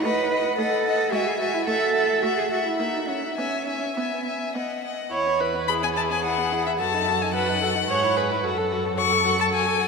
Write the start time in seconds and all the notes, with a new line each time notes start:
0.04 A3 B4 D#5 F#5
0.31 D#5 F#5
0.58 A3 A4 D#5 F#5
0.85 D#5 F#5
1.12 G#3 F#4 E5 G#5
1.27 G#4
1.40 F#4 E5 G#5
1.55 E4
1.66 A3 A4 E5 F#5
1.95 E5 F#5
2.22 A3 F#4 E5 F#5
2.38 G#4
2.51 F#4 E5 F#5
2.66 E4
2.79 A#3 D#4 E5 F#5
3.08 C#4 E5 F#5
3.23 D#4
3.37 B3 C#4 E5 G#5
3.68 E5 G#5
3.97 B3 E5 G#5
4.26 E5 G#5
4.55 B3 D#5 F#5
4.84 D#5 F#5
5.12 E2 E4 C#5
5.26 B3
5.40 E4 B4
5.55 B3
5.68 E4 G#4 B5
5.83 B3 G#5
5.96 E4 A5
6.10 B3 G#5
6.24 E4 F#5
6.38 B3
6.52 E4
6.66 B3 E5
6.79 F#2 F#4 A4 A5
6.94 D#4
7.08 F#4
7.21 D#4 G#5
7.34 F#4 B4 F#5
7.49 D#4
7.62 F#4 A4
7.75 D#4
7.88 G#2 G#4 C#5
8.03 E4
8.17 G#4 B4
8.30 E4
8.43 F#2 F#4 A4
8.57 A4
8.71 F#4
8.85 A4
8.97 F#4 A4 C#6
9.12 A4
9.25 F#4
9.39 A4 A5
9.53 F#4 G#5
9.66 A4
9.80 F#4